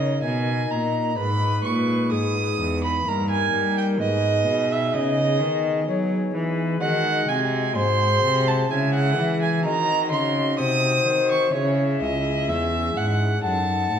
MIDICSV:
0, 0, Header, 1, 5, 480
1, 0, Start_track
1, 0, Key_signature, 5, "minor"
1, 0, Tempo, 940439
1, 600, Time_signature, 3, 2, 24, 8
1, 3476, Key_signature, 4, "minor"
1, 3479, Tempo, 946372
1, 7120, End_track
2, 0, Start_track
2, 0, Title_t, "Violin"
2, 0, Program_c, 0, 40
2, 0, Note_on_c, 0, 75, 84
2, 114, Note_off_c, 0, 75, 0
2, 117, Note_on_c, 0, 80, 90
2, 359, Note_on_c, 0, 82, 75
2, 367, Note_off_c, 0, 80, 0
2, 595, Note_off_c, 0, 82, 0
2, 598, Note_on_c, 0, 83, 102
2, 835, Note_off_c, 0, 83, 0
2, 838, Note_on_c, 0, 85, 86
2, 1076, Note_off_c, 0, 85, 0
2, 1082, Note_on_c, 0, 87, 100
2, 1438, Note_off_c, 0, 87, 0
2, 1450, Note_on_c, 0, 83, 84
2, 1571, Note_on_c, 0, 82, 92
2, 1578, Note_off_c, 0, 83, 0
2, 1682, Note_off_c, 0, 82, 0
2, 1685, Note_on_c, 0, 80, 96
2, 1919, Note_off_c, 0, 80, 0
2, 1928, Note_on_c, 0, 79, 83
2, 1969, Note_off_c, 0, 79, 0
2, 2046, Note_on_c, 0, 75, 101
2, 2409, Note_on_c, 0, 76, 92
2, 2416, Note_off_c, 0, 75, 0
2, 2519, Note_on_c, 0, 75, 91
2, 2527, Note_off_c, 0, 76, 0
2, 2996, Note_off_c, 0, 75, 0
2, 3477, Note_on_c, 0, 78, 107
2, 3717, Note_on_c, 0, 80, 89
2, 3724, Note_off_c, 0, 78, 0
2, 3954, Note_off_c, 0, 80, 0
2, 3957, Note_on_c, 0, 84, 122
2, 4322, Note_on_c, 0, 81, 93
2, 4329, Note_off_c, 0, 84, 0
2, 4437, Note_on_c, 0, 80, 84
2, 4445, Note_off_c, 0, 81, 0
2, 4552, Note_off_c, 0, 80, 0
2, 4556, Note_on_c, 0, 78, 102
2, 4790, Note_off_c, 0, 78, 0
2, 4800, Note_on_c, 0, 80, 83
2, 4914, Note_off_c, 0, 80, 0
2, 4917, Note_on_c, 0, 82, 117
2, 5147, Note_off_c, 0, 82, 0
2, 5150, Note_on_c, 0, 84, 93
2, 5385, Note_off_c, 0, 84, 0
2, 5395, Note_on_c, 0, 87, 117
2, 5744, Note_off_c, 0, 87, 0
2, 5760, Note_on_c, 0, 85, 91
2, 5870, Note_off_c, 0, 85, 0
2, 5873, Note_on_c, 0, 73, 87
2, 6108, Note_off_c, 0, 73, 0
2, 6117, Note_on_c, 0, 75, 92
2, 6359, Note_on_c, 0, 76, 96
2, 6366, Note_off_c, 0, 75, 0
2, 6601, Note_on_c, 0, 78, 86
2, 6609, Note_off_c, 0, 76, 0
2, 6833, Note_off_c, 0, 78, 0
2, 6836, Note_on_c, 0, 81, 101
2, 7120, Note_off_c, 0, 81, 0
2, 7120, End_track
3, 0, Start_track
3, 0, Title_t, "Recorder"
3, 0, Program_c, 1, 74
3, 0, Note_on_c, 1, 73, 58
3, 112, Note_off_c, 1, 73, 0
3, 116, Note_on_c, 1, 76, 67
3, 132, Note_on_c, 1, 75, 73
3, 137, Note_off_c, 1, 76, 0
3, 593, Note_on_c, 1, 71, 73
3, 601, Note_off_c, 1, 75, 0
3, 1078, Note_on_c, 1, 68, 66
3, 1085, Note_off_c, 1, 71, 0
3, 1422, Note_off_c, 1, 68, 0
3, 1561, Note_on_c, 1, 70, 77
3, 2037, Note_on_c, 1, 71, 73
3, 2045, Note_off_c, 1, 70, 0
3, 2514, Note_off_c, 1, 71, 0
3, 2517, Note_on_c, 1, 75, 85
3, 2985, Note_off_c, 1, 75, 0
3, 2996, Note_on_c, 1, 73, 71
3, 3236, Note_on_c, 1, 71, 82
3, 3244, Note_off_c, 1, 73, 0
3, 3478, Note_on_c, 1, 75, 76
3, 3485, Note_off_c, 1, 71, 0
3, 3956, Note_on_c, 1, 72, 83
3, 3964, Note_off_c, 1, 75, 0
3, 4431, Note_off_c, 1, 72, 0
3, 4434, Note_on_c, 1, 76, 79
3, 4765, Note_off_c, 1, 76, 0
3, 4915, Note_on_c, 1, 75, 76
3, 5388, Note_on_c, 1, 72, 79
3, 5396, Note_off_c, 1, 75, 0
3, 5863, Note_on_c, 1, 76, 91
3, 5870, Note_off_c, 1, 72, 0
3, 6680, Note_off_c, 1, 76, 0
3, 6830, Note_on_c, 1, 78, 85
3, 7120, Note_off_c, 1, 78, 0
3, 7120, End_track
4, 0, Start_track
4, 0, Title_t, "Pipe organ"
4, 0, Program_c, 2, 19
4, 0, Note_on_c, 2, 49, 54
4, 0, Note_on_c, 2, 63, 48
4, 0, Note_on_c, 2, 70, 48
4, 98, Note_off_c, 2, 49, 0
4, 114, Note_on_c, 2, 47, 51
4, 337, Note_off_c, 2, 47, 0
4, 354, Note_on_c, 2, 46, 56
4, 572, Note_off_c, 2, 63, 0
4, 575, Note_on_c, 2, 56, 54
4, 576, Note_off_c, 2, 70, 0
4, 577, Note_off_c, 2, 46, 0
4, 582, Note_on_c, 2, 63, 46
4, 592, Note_on_c, 2, 71, 49
4, 598, Note_on_c, 2, 44, 58
4, 820, Note_off_c, 2, 44, 0
4, 838, Note_on_c, 2, 46, 54
4, 1060, Note_off_c, 2, 46, 0
4, 1080, Note_on_c, 2, 44, 66
4, 1303, Note_off_c, 2, 44, 0
4, 1323, Note_on_c, 2, 40, 57
4, 1533, Note_off_c, 2, 56, 0
4, 1537, Note_off_c, 2, 63, 0
4, 1541, Note_off_c, 2, 71, 0
4, 1544, Note_on_c, 2, 58, 50
4, 1545, Note_off_c, 2, 40, 0
4, 1552, Note_on_c, 2, 63, 52
4, 1561, Note_on_c, 2, 70, 56
4, 1568, Note_on_c, 2, 43, 56
4, 1786, Note_off_c, 2, 43, 0
4, 1806, Note_on_c, 2, 55, 54
4, 2018, Note_off_c, 2, 58, 0
4, 2020, Note_off_c, 2, 63, 0
4, 2024, Note_off_c, 2, 55, 0
4, 2024, Note_on_c, 2, 59, 50
4, 2027, Note_off_c, 2, 70, 0
4, 2031, Note_on_c, 2, 63, 60
4, 2039, Note_on_c, 2, 68, 54
4, 2046, Note_on_c, 2, 44, 60
4, 2264, Note_off_c, 2, 44, 0
4, 2285, Note_on_c, 2, 47, 62
4, 2502, Note_off_c, 2, 47, 0
4, 2521, Note_on_c, 2, 49, 66
4, 2738, Note_off_c, 2, 49, 0
4, 2759, Note_on_c, 2, 51, 64
4, 2977, Note_off_c, 2, 51, 0
4, 3001, Note_on_c, 2, 54, 63
4, 3218, Note_off_c, 2, 54, 0
4, 3242, Note_on_c, 2, 52, 61
4, 3446, Note_off_c, 2, 59, 0
4, 3449, Note_off_c, 2, 63, 0
4, 3454, Note_off_c, 2, 68, 0
4, 3459, Note_off_c, 2, 52, 0
4, 3459, Note_on_c, 2, 56, 57
4, 3466, Note_on_c, 2, 66, 59
4, 3474, Note_on_c, 2, 68, 58
4, 3481, Note_on_c, 2, 51, 60
4, 3698, Note_off_c, 2, 51, 0
4, 3718, Note_on_c, 2, 48, 64
4, 3937, Note_off_c, 2, 48, 0
4, 3961, Note_on_c, 2, 44, 68
4, 4178, Note_off_c, 2, 44, 0
4, 4202, Note_on_c, 2, 48, 54
4, 4406, Note_off_c, 2, 56, 0
4, 4410, Note_off_c, 2, 66, 0
4, 4414, Note_off_c, 2, 68, 0
4, 4416, Note_on_c, 2, 56, 54
4, 4418, Note_off_c, 2, 48, 0
4, 4423, Note_on_c, 2, 64, 56
4, 4430, Note_on_c, 2, 68, 56
4, 4438, Note_on_c, 2, 49, 66
4, 4656, Note_off_c, 2, 49, 0
4, 4677, Note_on_c, 2, 52, 66
4, 4889, Note_off_c, 2, 56, 0
4, 4889, Note_on_c, 2, 60, 57
4, 4893, Note_off_c, 2, 64, 0
4, 4895, Note_off_c, 2, 52, 0
4, 4897, Note_off_c, 2, 68, 0
4, 4898, Note_on_c, 2, 63, 60
4, 4904, Note_on_c, 2, 66, 54
4, 4912, Note_on_c, 2, 51, 57
4, 5131, Note_off_c, 2, 51, 0
4, 5153, Note_on_c, 2, 49, 60
4, 5371, Note_off_c, 2, 49, 0
4, 5393, Note_on_c, 2, 48, 68
4, 5610, Note_off_c, 2, 48, 0
4, 5631, Note_on_c, 2, 51, 54
4, 5837, Note_off_c, 2, 60, 0
4, 5841, Note_off_c, 2, 63, 0
4, 5845, Note_off_c, 2, 66, 0
4, 5848, Note_on_c, 2, 61, 54
4, 5850, Note_off_c, 2, 51, 0
4, 5856, Note_on_c, 2, 64, 53
4, 5863, Note_on_c, 2, 68, 57
4, 5871, Note_on_c, 2, 49, 60
4, 6091, Note_off_c, 2, 49, 0
4, 6111, Note_on_c, 2, 37, 62
4, 6317, Note_off_c, 2, 61, 0
4, 6326, Note_off_c, 2, 64, 0
4, 6328, Note_on_c, 2, 61, 54
4, 6332, Note_off_c, 2, 37, 0
4, 6334, Note_off_c, 2, 68, 0
4, 6336, Note_on_c, 2, 64, 56
4, 6345, Note_on_c, 2, 68, 53
4, 6352, Note_on_c, 2, 40, 63
4, 6573, Note_off_c, 2, 40, 0
4, 6594, Note_on_c, 2, 44, 56
4, 6807, Note_off_c, 2, 61, 0
4, 6810, Note_on_c, 2, 63, 53
4, 6812, Note_off_c, 2, 64, 0
4, 6815, Note_off_c, 2, 44, 0
4, 6816, Note_off_c, 2, 68, 0
4, 6819, Note_on_c, 2, 69, 51
4, 6835, Note_on_c, 2, 42, 64
4, 7057, Note_off_c, 2, 42, 0
4, 7077, Note_on_c, 2, 45, 53
4, 7120, Note_off_c, 2, 45, 0
4, 7120, Note_off_c, 2, 63, 0
4, 7120, Note_off_c, 2, 69, 0
4, 7120, End_track
5, 0, Start_track
5, 0, Title_t, "Cello"
5, 0, Program_c, 3, 42
5, 0, Note_on_c, 3, 49, 59
5, 114, Note_off_c, 3, 49, 0
5, 118, Note_on_c, 3, 47, 61
5, 354, Note_off_c, 3, 47, 0
5, 359, Note_on_c, 3, 46, 60
5, 595, Note_off_c, 3, 46, 0
5, 600, Note_on_c, 3, 44, 68
5, 836, Note_off_c, 3, 44, 0
5, 838, Note_on_c, 3, 46, 80
5, 1081, Note_on_c, 3, 44, 66
5, 1089, Note_off_c, 3, 46, 0
5, 1320, Note_off_c, 3, 44, 0
5, 1323, Note_on_c, 3, 40, 69
5, 1560, Note_off_c, 3, 40, 0
5, 1563, Note_on_c, 3, 43, 74
5, 1799, Note_off_c, 3, 43, 0
5, 1801, Note_on_c, 3, 55, 69
5, 2042, Note_on_c, 3, 44, 75
5, 2050, Note_off_c, 3, 55, 0
5, 2279, Note_off_c, 3, 44, 0
5, 2282, Note_on_c, 3, 47, 76
5, 2521, Note_on_c, 3, 49, 71
5, 2528, Note_off_c, 3, 47, 0
5, 2758, Note_on_c, 3, 51, 74
5, 2766, Note_off_c, 3, 49, 0
5, 2994, Note_off_c, 3, 51, 0
5, 2997, Note_on_c, 3, 54, 80
5, 3232, Note_off_c, 3, 54, 0
5, 3239, Note_on_c, 3, 52, 67
5, 3473, Note_off_c, 3, 52, 0
5, 3475, Note_on_c, 3, 51, 78
5, 3710, Note_off_c, 3, 51, 0
5, 3718, Note_on_c, 3, 48, 88
5, 3956, Note_on_c, 3, 44, 79
5, 3963, Note_off_c, 3, 48, 0
5, 4196, Note_off_c, 3, 44, 0
5, 4198, Note_on_c, 3, 48, 79
5, 4432, Note_off_c, 3, 48, 0
5, 4440, Note_on_c, 3, 49, 79
5, 4679, Note_on_c, 3, 52, 72
5, 4686, Note_off_c, 3, 49, 0
5, 4916, Note_on_c, 3, 51, 75
5, 4923, Note_off_c, 3, 52, 0
5, 5153, Note_on_c, 3, 49, 81
5, 5161, Note_off_c, 3, 51, 0
5, 5392, Note_on_c, 3, 48, 69
5, 5400, Note_off_c, 3, 49, 0
5, 5627, Note_off_c, 3, 48, 0
5, 5630, Note_on_c, 3, 51, 70
5, 5865, Note_off_c, 3, 51, 0
5, 5871, Note_on_c, 3, 49, 81
5, 6111, Note_on_c, 3, 37, 72
5, 6118, Note_off_c, 3, 49, 0
5, 6351, Note_on_c, 3, 40, 71
5, 6358, Note_off_c, 3, 37, 0
5, 6590, Note_off_c, 3, 40, 0
5, 6593, Note_on_c, 3, 44, 85
5, 6830, Note_off_c, 3, 44, 0
5, 6835, Note_on_c, 3, 42, 63
5, 7071, Note_off_c, 3, 42, 0
5, 7074, Note_on_c, 3, 45, 65
5, 7120, Note_off_c, 3, 45, 0
5, 7120, End_track
0, 0, End_of_file